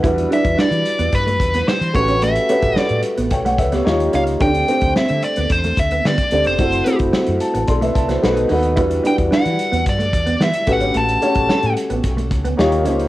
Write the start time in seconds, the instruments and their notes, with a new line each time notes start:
0.03 fretless electric bass E2, grand piano G3 D4 E4 F#4 B4, clean electric guitar E4, kick, closed hi-hat
0.17 muted clean electric guitar stroke, closed hi-hat
0.30 grand piano G3 D4 E4 F#4 B4, clean electric guitar D4, lead electric guitar E5, closed hi-hat
0.45 fretless electric bass E2, kick, closed hi-hat
0.58 clean electric guitar D4, lead electric guitar D5, snare
0.71 fretless electric bass E3, muted clean electric guitar stroke, closed hi-hat
0.86 closed hi-hat
0.99 fretless electric bass E2, clean electric guitar B3, closed hi-hat
1.12 fretless electric bass G2, lead electric guitar B4, kick, closed hi-hat
1.26 clean electric guitar A3, closed hi-hat
1.40 fretless electric bass E2, muted clean electric guitar stroke, kick, closed hi-hat
1.54 clean electric guitar B3, snare, closed hi-hat
1.68 clean electric guitar B3, lead electric guitar C5, snare
1.81 fretless electric bass E3, closed hi-hat
1.93 fretless electric bass A1, grand piano A3 C#4 F#4 G4 B4, lead electric guitar C#5, muted clean electric guitar stroke, kick, closed hi-hat
2.08 clean electric guitar C#4, closed hi-hat
2.22 clean electric guitar A3, lead electric guitar E5, closed hi-hat
2.36 muted clean electric guitar stroke, closed hi-hat
2.49 grand piano A3 C#4 F#4 G4 B4, clean electric guitar C#4, closed hi-hat
2.62 fretless electric bass A1, kick, closed hi-hat
2.76 clean electric guitar C#4, lead electric guitar D5, muted fretless electric bass stroke, snare
2.89 fretless electric bass A2, muted clean electric guitar stroke, closed hi-hat
3.03 closed hi-hat
3.17 fretless electric bass A1, clean electric guitar B3, closed hi-hat
3.31 fretless electric bass B1, grand piano C#5 G5, kick, closed hi-hat
3.45 clean electric guitar A3, grand piano C#5 F#5, closed hi-hat
3.58 fretless electric bass C#2, grand piano B4 E5, muted clean electric guitar stroke, kick, closed hi-hat
3.72 clean electric guitar B3, grand piano G4 C#5, snare, closed hi-hat
3.84 fretless electric bass D#2, grand piano A#3 D#4 F4 G4 C#5, snare
4.00 closed hi-hat
4.12 fretless electric bass C#2, grand piano A#3 D#4 F4 G4 C#5, clean electric guitar C#4, lead electric guitar F5, closed hi-hat
4.27 closed hi-hat
4.39 fretless electric bass D2, grand piano A3 C4 D4 G4 C5, clean electric guitar D4, lead electric guitar G5, kick, closed hi-hat
4.54 muted clean electric guitar stroke, closed hi-hat
4.67 grand piano A3 C4 D4 G4 C5, clean electric guitar C4, closed hi-hat
4.81 fretless electric bass D2, kick, closed hi-hat
4.96 clean electric guitar C4, lead electric guitar E5, snare
5.08 fretless electric bass D3, muted clean electric guitar stroke, closed hi-hat
5.22 lead electric guitar D5, closed hi-hat
5.36 fretless electric bass D2, clean electric guitar B3, closed hi-hat
5.49 fretless electric bass E2, lead electric guitar C5, kick, closed hi-hat
5.64 clean electric guitar A3, closed hi-hat
5.77 fretless electric bass D2, lead electric guitar E5, muted clean electric guitar stroke, kick, closed hi-hat
5.91 clean electric guitar B3, closed hi-hat
6.05 fretless electric bass D3, clean electric guitar B3, lead electric guitar D5, snare
6.18 kick, closed hi-hat
6.31 fretless electric bass D2, grand piano A3 C4 D4 G4 D5, muted clean electric guitar stroke, closed hi-hat
6.44 fretless electric bass F1, clean electric guitar C4, lead electric guitar C5, closed hi-hat
6.58 fretless electric bass F#1, grand piano A3 C4 E4 F#4 C5, clean electric guitar A3, kick, closed hi-hat
6.73 muted clean electric guitar stroke, closed hi-hat
6.85 grand piano A3 C4 E4 F#4 C5, clean electric guitar C4, closed hi-hat
6.99 fretless electric bass F#1, kick, closed hi-hat
7.13 clean electric guitar C4, muted fretless electric bass stroke, snare
7.27 fretless electric bass F#2, muted clean electric guitar stroke, closed hi-hat
7.40 grand piano A5, closed hi-hat
7.54 fretless electric bass A1, clean electric guitar B3, closed hi-hat
7.67 fretless electric bass B1, grand piano A4 D5 C6, kick, closed hi-hat
7.81 clean electric guitar A3, grand piano B4 E5, closed hi-hat
7.94 fretless electric bass C2, grand piano A5, muted clean electric guitar stroke, kick, closed hi-hat
8.08 clean electric guitar B3, grand piano F#4 C5, snare, closed hi-hat
8.22 fretless electric bass B1, grand piano A3 B3 D#4 F#4 B4 F#5, snare
8.37 closed hi-hat
8.49 fretless electric bass D#2, grand piano A3 B3 D#4 F#4 B4 D#5, clean electric guitar D#4, open hi-hat
8.63 closed hi-hat
8.76 fretless electric bass E2, grand piano G3 D4 E4 F#4 B4, clean electric guitar E4, kick, closed hi-hat
8.90 muted clean electric guitar stroke, closed hi-hat
9.04 grand piano G3 D4 E4 F#4 B4, clean electric guitar D4, lead electric guitar G5, closed hi-hat
9.18 fretless electric bass E2, kick, closed hi-hat
9.31 clean electric guitar D4, lead electric guitar F#5, snare
9.45 fretless electric bass E3, muted clean electric guitar stroke, closed hi-hat
9.59 closed hi-hat
9.72 fretless electric bass E2, clean electric guitar B3, closed hi-hat
9.86 fretless electric bass G2, lead electric guitar D5, kick, closed hi-hat
9.98 clean electric guitar A3, closed hi-hat
10.12 fretless electric bass E2, muted clean electric guitar stroke, kick, closed hi-hat
10.26 clean electric guitar B3, closed hi-hat
10.40 fretless electric bass E3, clean electric guitar B3, lead electric guitar E5, snare
10.53 closed hi-hat
10.66 fretless electric bass A1, grand piano A3 C#4 F#4 G4 B4, muted clean electric guitar stroke, kick, snare, closed hi-hat
10.73 lead electric guitar F#5
10.80 fretless electric bass G#1, clean electric guitar C#4, closed hi-hat
10.94 fretless electric bass A1, clean electric guitar A3, closed hi-hat
10.98 lead electric guitar A5
11.09 muted clean electric guitar stroke, closed hi-hat
11.21 grand piano A3 C#4 F#4 G4 C#5, clean electric guitar C#4, closed hi-hat
11.35 fretless electric bass A1, kick, closed hi-hat
11.49 clean electric guitar C#4, muted fretless electric bass stroke, snare
11.63 fretless electric bass A2, muted clean electric guitar stroke, closed hi-hat
11.77 closed hi-hat
11.90 fretless electric bass A1, clean electric guitar B3, closed hi-hat
12.04 fretless electric bass B1, kick, closed hi-hat
12.17 clean electric guitar A3, closed hi-hat
12.31 fretless electric bass C#2, muted clean electric guitar stroke, kick, closed hi-hat
12.44 clean electric guitar B3, closed hi-hat
12.57 fretless electric bass D#2, grand piano A#3 D#4 F4 G4 C#5, snare
12.72 closed hi-hat
12.85 fretless electric bass C#2, grand piano A#3 D#4 F4 G4 C5, clean electric guitar C#4, closed hi-hat
12.99 closed hi-hat